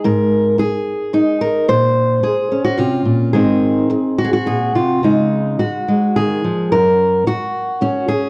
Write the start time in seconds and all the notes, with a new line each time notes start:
Already playing: G#3
0.04 G#2 A#4
0.58 G#4, muted steel-string acoustic guitar stroke
1.13 D#4, muted steel-string acoustic guitar stroke
1.41 A#4
1.68 A#2 C5
2.23 G#4, muted steel-string acoustic guitar stroke
2.51 C#4
2.64 F#4
2.77 C3 F4
3.05 A#2
3.33 G#2 D#3 C4 D#4 G#4
3.90 muted steel-string acoustic guitar stroke
4.19 F#4
4.25 G#4
4.33 F#4
4.46 A#2 G#4
4.75 C3 F4
5.03 C#3 G#3 D#4
5.60 F#4, muted steel-string acoustic guitar stroke
5.88 G#3
6.16 D#3 G#4
6.44 F3
6.72 F#2 A#4
7.26 F#4, muted steel-string acoustic guitar stroke
7.81 C#4, muted steel-string acoustic guitar stroke
8.08 G#4